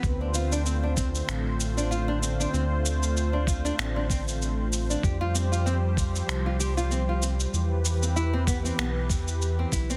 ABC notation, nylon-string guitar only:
X:1
M:4/4
L:1/16
Q:"Swing 16ths" 1/4=96
K:Ddor
V:1 name="Nylon-string guitar"
z D F D C D C z4 D F D C D | C z4 D F D C D C z4 D | G F C F C z4 F G F C F C z | z3 C E C B, C B, z4 C E C |]